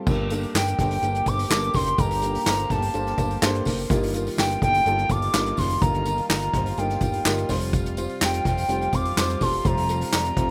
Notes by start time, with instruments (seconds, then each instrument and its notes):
0.06 analog synth bass G1, upright piano G2 A#3 D4 G4 A4 A#4, string section A#2 A3 G4, kick, crash, tambourine
0.30 upright piano A#3 D4 G4 A4 A#4, hi-hat pedal, open hi-hat, tambourine
0.43 open hi-hat
0.55 analog synth bass G1, upright piano A#3 D4 G4 A4 A#4, soft synth lead G5, snare, clap, hi-hat pedal, open hi-hat, tambourine
0.67 hi-hat pedal, open hi-hat
0.79 analog synth bass G1, upright piano A#3 D4 G4 A4 C5, soft synth lead G5, kick, hi-hat pedal, open hi-hat, tambourine
0.91 hi-hat pedal, open hi-hat
1.02 analog synth bass G1, upright piano A#3 D4 G4 A4 A#4, hi-hat pedal, open hi-hat, tambourine
1.15 hi-hat pedal, open hi-hat
1.26 analog synth bass G1, upright piano A#3 D4 G4 A4 C5, soft synth lead D6, kick, hi-hat pedal, open hi-hat, tambourine
1.39 hi-hat pedal, open hi-hat
1.50 analog synth bass G1, upright piano A#3 D4 G4 A4 A#4, soft synth lead D6, snare, clap, hi-hat pedal, open hi-hat, tambourine
1.63 hi-hat pedal, open hi-hat
1.74 analog synth bass F#1, upright piano A#3 D4 G4 A4 A#4, soft synth lead C6, kick, hi-hat pedal, open hi-hat, tambourine
1.86 hi-hat pedal, open hi-hat
1.98 analog synth bass G1, upright piano G2 A#3 D4 G4 A4 A#4, string section A#3, soft synth lead A#5, kick, hi-hat pedal, open hi-hat, tambourine
2.10 hi-hat pedal, open hi-hat
2.22 upright piano A#3 D4 G4 A4 A#4, hi-hat pedal, open hi-hat, tambourine
2.35 hi-hat pedal, open hi-hat
2.46 analog synth bass G1, upright piano A#3 D4 G4 A4 C5, soft synth lead A#5, snare, clap, hi-hat pedal, open hi-hat, tambourine
2.58 hi-hat pedal, open hi-hat
2.70 analog synth bass G1, upright piano A#3 D4 G4 A4 A#4, soft synth lead A5, kick, hi-hat pedal, open hi-hat, tambourine
2.82 hi-hat pedal, open hi-hat
2.94 analog synth bass G1, upright piano A#3 D4 G4 A4 C5, hi-hat pedal, open hi-hat, tambourine
3.06 snare, hi-hat pedal
3.18 analog synth bass G1, upright piano A#3 D4 G4 A4 C5, kick, hi-hat pedal, open hi-hat, tambourine
3.31 open hi-hat
3.42 analog synth bass G1, upright piano A#3 D4 G4 A4 C5, snare, clap, hi-hat pedal, open hi-hat, tambourine
3.54 hi-hat pedal
3.65 analog synth bass F#1, upright piano A#3 D4 G4 A4 A#4, kick, hi-hat pedal, open hi-hat, tambourine
3.79 open hi-hat
3.90 analog synth bass G1, upright piano G2 A#3 D#4 F4 G4 A#4, string section D#3 G3 F4, kick, hi-hat pedal, open hi-hat, tambourine
4.03 hi-hat pedal, open hi-hat
4.13 upright piano A#3 D#4 F4 G4 A#4, hi-hat pedal, open hi-hat, tambourine
4.26 hi-hat pedal, open hi-hat
4.38 analog synth bass G1, upright piano A#3 D#4 F4 G4 A#4, soft synth lead G5, snare, clap, hi-hat pedal, open hi-hat, tambourine
4.50 hi-hat pedal, open hi-hat
4.61 analog synth bass G1, upright piano A#3 D#4 F4 G4 A4, soft synth lead G5, kick, hi-hat pedal, open hi-hat
4.74 hi-hat pedal, open hi-hat
4.86 analog synth bass G1, upright piano A#3 D#4 F4 G4 A4, hi-hat pedal, open hi-hat
4.98 hi-hat pedal
5.09 analog synth bass G1, upright piano A#3 D#4 F4 G4 A4, soft synth lead D6, kick, hi-hat pedal, open hi-hat, tambourine
5.22 open hi-hat
5.33 analog synth bass G1, upright piano A#3 D#4 F4 G4 A#4, snare, clap, hi-hat pedal, open hi-hat, tambourine
5.46 hi-hat pedal
5.57 analog synth bass F#1, upright piano A#3 D#4 F4 G4 A#4, soft synth lead C6, kick, hi-hat pedal, open hi-hat, tambourine
5.70 open hi-hat
5.81 analog synth bass G1, upright piano G2 A#3 D#4 F4 G4 A#4, soft synth lead A#5, kick, hi-hat pedal, open hi-hat, tambourine
5.94 hi-hat pedal
6.05 upright piano A#3 D#4 F4 G4 A#4, hi-hat pedal, open hi-hat, tambourine
6.18 open hi-hat
6.29 analog synth bass G1, upright piano A#3 D#4 F4 G4 A#4, soft synth lead A#5, snare, clap, hi-hat pedal, open hi-hat, tambourine
6.41 hi-hat pedal, open hi-hat
6.53 analog synth bass G1, upright piano A#3 D#4 F4 G4 C5, kick, hi-hat pedal, open hi-hat, tambourine
6.66 hi-hat pedal, open hi-hat
6.77 analog synth bass G1, upright piano A#3 D#4 F4 G4 A#4, soft synth lead G5, hi-hat pedal, open hi-hat, tambourine
6.90 snare, hi-hat pedal
7.00 analog synth bass G1, upright piano A#3 D#4 F4 G4 A#4, kick, hi-hat pedal, open hi-hat, tambourine
7.13 open hi-hat
7.25 analog synth bass G1, upright piano A#3 D#4 F4 G4 A#4, snare, clap, hi-hat pedal, open hi-hat, tambourine
7.37 hi-hat pedal
7.49 analog synth bass F1, string section C3, upright piano G3 C4 F4 G4 C5, kick, hi-hat pedal, open hi-hat, tambourine
7.61 open hi-hat
7.73 kick, hi-hat pedal, open hi-hat, tambourine
7.85 hi-hat pedal
7.97 upright piano G3 C4 F4 G4 C5, hi-hat pedal, open hi-hat, tambourine
8.09 open hi-hat
8.21 analog synth bass F1, upright piano G3 C4 F4 G4 C5, soft synth lead G5, snare, clap, hi-hat pedal, open hi-hat, tambourine
8.33 hi-hat pedal, open hi-hat
8.45 analog synth bass F1, upright piano G3 C4 F4 G4 C5, soft synth lead G5, kick, hi-hat pedal, open hi-hat, tambourine
8.57 hi-hat pedal, open hi-hat
8.69 analog synth bass F1, upright piano G3 C4 F4 G4 C5, hi-hat pedal, open hi-hat, tambourine
8.81 hi-hat pedal
8.93 analog synth bass F1, upright piano G3 C4 F4 G4 C5, soft synth lead D6, kick, hi-hat pedal, open hi-hat, tambourine
9.05 open hi-hat
9.17 analog synth bass F1, upright piano G3 C4 F4 G4 C5, snare, clap, hi-hat pedal, open hi-hat, tambourine
9.29 hi-hat pedal
9.40 analog synth bass E1, upright piano G3 C4 F4 G4 A4, soft synth lead C6, kick, hi-hat pedal, open hi-hat, tambourine
9.53 open hi-hat
9.65 analog synth bass F1, upright piano G3 C4 F4 G4 C5, soft synth lead A#5, kick, hi-hat pedal, open hi-hat, tambourine
9.77 hi-hat pedal, open hi-hat
9.88 upright piano G3 C4 F4 G4 A4, hi-hat pedal, open hi-hat, tambourine
10.01 hi-hat pedal, open hi-hat
10.12 analog synth bass F1, upright piano G3 C4 F4 G4 D5, soft synth lead A#5, snare, clap, hi-hat pedal, open hi-hat, tambourine
10.24 hi-hat pedal, open hi-hat
10.37 analog synth bass F1, upright piano G3 C4 F4 G4 C5, kick, hi-hat pedal, open hi-hat